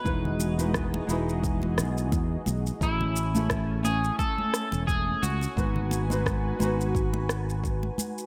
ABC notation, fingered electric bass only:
X:1
M:4/4
L:1/16
Q:"Swing 16ths" 1/4=87
K:Alyd
V:1 name="Fingered electric bass" clef=bass
E,,,4- E,,, z E,,,4 B,,,2 E,, z B,,, z | A,,,6- A,,, z4 E,,,2 z C,, z | G,,,4- G,,, z G,,,6- G,,, z3 |]